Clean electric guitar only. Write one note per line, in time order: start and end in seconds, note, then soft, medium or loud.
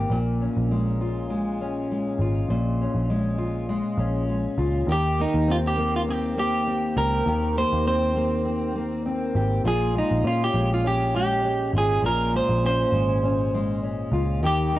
4.92 5.21 G4 medium
5.21 5.50 D#4 medium
5.52 5.57 F4 medium
5.67 5.94 G4 medium
5.96 6.01 F4 medium
6.10 6.38 G4 medium
6.39 6.97 G4 medium
6.98 7.58 A#4 medium
7.58 7.85 C5 medium
7.88 9.02 C5 medium
9.68 9.94 G#4 medium
9.98 10.24 D#4 medium
10.27 10.43 F4 medium
10.44 10.70 G4 medium
10.74 10.86 F4 medium
10.87 11.15 G4 medium
11.16 11.71 G4 medium
11.78 12.03 G#4 medium
12.06 12.35 A#4 medium
12.37 12.65 C5 medium
12.66 13.79 C5 medium
14.46 14.74 G4 medium